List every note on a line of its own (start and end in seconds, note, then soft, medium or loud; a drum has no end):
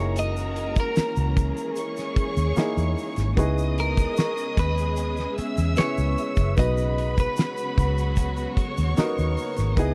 0.00 0.78 F#1 loud
0.00 3.33 E3 medium
0.00 9.94 G#3 medium
0.00 1.16 A#3 medium
0.00 3.34 A#3 medium
0.00 3.34 C#4 medium
0.00 1.16 D#4 medium
0.00 1.17 E4 medium
0.00 1.35 F#4 medium
0.00 1.20 G#4 medium
0.00 1.73 A#4 medium
0.00 0.19 C#5 medium
0.00 1.73 A#5 medium
0.16 0.79 D#5 loud
0.16 closed hi-hat medium
0.16 shaker medium
0.37 shaker soft
0.56 closed hi-hat medium
0.76 kick medium
0.76 closed hi-hat medium
0.76 shaker soft
0.80 2.34 A#4 medium
0.96 muted fingered electric bass stroke soft
0.96 snare loud
0.96 closed hi-hat medium
0.96 shaker medium
1.16 1.51 C#2 medium
1.16 shaker soft
1.37 3.35 G#4 medium
1.37 kick medium
1.37 closed hi-hat medium
1.37 shaker soft
1.57 closed hi-hat medium
1.57 shaker soft
1.76 3.34 C#5 medium
1.76 3.34 C#6 medium
1.76 closed hi-hat medium
1.76 shaker medium
1.97 snare soft
1.97 closed hi-hat soft
1.97 shaker soft
2.16 muted fingered electric bass stroke soft
2.16 kick medium
2.16 closed hi-hat medium
2.37 2.54 D#2 medium
2.37 closed hi-hat soft
2.37 shaker medium
2.56 3.27 A#3 medium
2.56 3.27 D#4 medium
2.56 3.27 E4 medium
2.56 3.28 G#4 medium
2.56 muted fingered electric bass stroke soft
2.56 snare loud
2.56 closed hi-hat medium
2.56 shaker medium
2.77 2.94 E2 medium
2.77 closed hi-hat soft
2.77 shaker soft
2.97 open hi-hat soft
2.97 shaker soft
3.16 3.34 G#1 medium
3.16 snare soft
3.16 closed hi-hat medium
3.16 shaker soft
3.36 4.05 C#2 loud
3.36 9.94 C#3 medium
3.36 4.77 B3 medium
3.36 6.54 B3 medium
3.36 6.54 C#4 medium
3.36 4.77 D#4 medium
3.36 4.78 E4 medium
3.36 6.54 G#4 medium
3.36 4.78 G#4 medium
3.36 5.33 D#5 medium
3.36 4.17 C#6 medium
3.36 5.33 D#6 medium
3.36 kick loud
3.36 closed hi-hat medium
3.36 shaker medium
3.58 shaker soft
3.78 4.59 A#4 medium
3.78 closed hi-hat medium
3.97 kick medium
3.97 closed hi-hat soft
3.97 shaker soft
4.17 6.89 C#6 medium
4.17 snare loud
4.17 closed hi-hat medium
4.17 shaker medium
4.37 closed hi-hat soft
4.37 shaker soft
4.57 5.25 D#2 medium
4.57 5.34 B4 loud
4.57 kick loud
4.57 closed hi-hat medium
4.57 shaker soft
4.78 closed hi-hat medium
4.78 shaker soft
4.96 closed hi-hat medium
4.96 shaker medium
5.17 snare soft
5.17 shaker soft
5.37 6.55 E5 medium
5.37 6.55 E6 loud
5.37 muted fingered electric bass stroke soft
5.37 closed hi-hat medium
5.57 5.75 E2 medium
5.57 closed hi-hat medium
5.57 shaker soft
5.76 6.47 B3 medium
5.76 6.48 C#4 medium
5.76 6.48 E4 medium
5.76 6.49 G#4 medium
5.76 6.54 C#5 loud
5.76 muted fingered electric bass stroke soft
5.76 snare medium
5.76 closed hi-hat medium
5.76 shaker medium
5.98 6.15 C#2 medium
5.98 shaker soft
6.18 closed hi-hat medium
6.18 shaker soft
6.36 6.54 F#1 medium
6.36 kick medium
6.36 closed hi-hat medium
6.36 shaker soft
6.57 7.26 B1 loud
6.57 9.75 F#3 medium
6.57 7.97 B3 medium
6.57 9.94 B3 medium
6.57 7.98 D#4 medium
6.57 9.75 F#4 medium
6.57 7.98 F#4 medium
6.57 8.54 B4 medium
6.57 7.99 B4 medium
6.57 7.14 D#5 loud
6.57 8.54 B5 loud
6.57 kick loud
6.57 closed hi-hat medium
6.57 shaker medium
6.77 shaker soft
6.98 closed hi-hat medium
7.18 8.75 B4 medium
7.18 kick loud
7.18 closed hi-hat medium
7.18 shaker soft
7.37 snare loud
7.37 closed hi-hat medium
7.37 shaker medium
7.57 shaker soft
7.78 8.46 C#2 medium
7.78 kick loud
7.78 closed hi-hat medium
7.78 shaker soft
7.98 closed hi-hat medium
7.98 shaker soft
8.16 kick medium
8.16 closed hi-hat medium
8.16 shaker medium
8.37 shaker soft
8.57 9.75 C#5 medium
8.57 9.75 C#6 loud
8.57 muted fingered electric bass stroke soft
8.57 kick medium
8.57 closed hi-hat medium
8.77 8.95 D#2 medium
8.77 closed hi-hat medium
8.77 shaker soft
8.97 9.04 A#3 medium
8.97 9.68 D#4 medium
8.97 9.68 F#4 medium
8.97 9.69 A#4 medium
8.97 9.94 D#6 medium
8.97 muted fingered electric bass stroke medium
8.97 snare loud
8.97 closed hi-hat medium
8.97 shaker medium
9.03 9.71 B3 medium
9.18 9.35 D#2 medium
9.18 shaker soft
9.37 open hi-hat soft
9.37 shaker soft
9.57 9.75 G#1 medium
9.57 snare soft
9.57 closed hi-hat medium
9.57 shaker medium
9.77 9.94 C#2 loud
9.77 9.94 B3 medium
9.77 9.94 C#4 medium
9.77 9.94 D#4 medium
9.77 9.94 E4 medium
9.77 9.94 G#4 medium
9.77 9.94 G#4 loud
9.77 9.94 D#5 medium
9.77 9.94 D#6 medium
9.77 kick loud
9.77 closed hi-hat medium
9.77 shaker medium